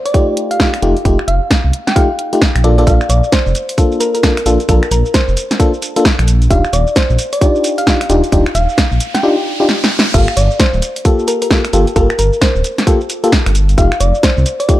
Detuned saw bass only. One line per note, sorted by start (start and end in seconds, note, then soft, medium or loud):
0.82 0.94 F1 medium
1.05 1.17 F1 loud
1.28 1.40 F1 medium
1.64 1.72 C2 loud
2.55 2.85 A#1 medium
2.87 2.99 A#1 loud
3.10 3.21 A#1 medium
3.46 3.54 F1 loud
4.46 4.58 A#1 medium
4.69 4.81 A#1 loud
4.91 5.03 A#1 medium
5.28 5.36 F1 loud
6.19 6.48 A#1 loud
6.51 6.62 D#1 loud
6.73 6.85 D#1 medium
7.10 7.17 A#1 loud
8.10 8.21 D#1 medium
8.32 8.44 D#1 loud
8.55 8.67 D#1 medium
8.92 8.99 A#1 loud
10.14 10.26 G1 loud
10.37 10.49 G1 medium
10.74 10.81 D1 loud
11.73 11.85 G1 medium
11.96 12.08 G1 loud
12.19 12.31 G1 medium
12.55 12.63 D1 loud
13.46 13.76 G1 loud
13.78 13.90 F1 loud
14.01 14.12 F1 medium
14.37 14.45 C2 loud